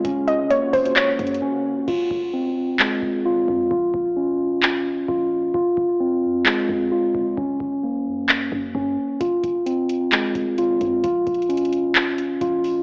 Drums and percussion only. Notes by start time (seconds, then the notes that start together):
0.05 kick, closed hi-hat
0.28 closed hi-hat
0.50 closed hi-hat
0.73 kick, closed hi-hat, open hi-hat
0.85 closed hi-hat
0.96 clap, closed hi-hat
1.19 kick, closed hi-hat
1.27 closed hi-hat
1.34 closed hi-hat
1.88 kick, crash
2.11 kick
2.79 clap
3.02 kick
3.48 kick
3.71 kick
3.94 kick
4.63 clap
5.08 kick
5.54 kick
5.77 kick
6.46 clap
6.69 kick
7.15 kick
7.37 kick
7.60 kick
8.29 clap
8.52 kick
8.75 kick
9.21 kick, closed hi-hat
9.43 kick, closed hi-hat
9.66 closed hi-hat
9.89 closed hi-hat
10.12 clap, closed hi-hat
10.35 kick, closed hi-hat
10.58 closed hi-hat
10.81 kick, closed hi-hat
11.04 kick, closed hi-hat
11.27 kick, closed hi-hat
11.34 closed hi-hat
11.42 closed hi-hat
11.50 closed hi-hat
11.57 closed hi-hat
11.65 closed hi-hat
11.73 closed hi-hat
11.95 clap, closed hi-hat
12.18 closed hi-hat
12.41 kick, closed hi-hat
12.64 open hi-hat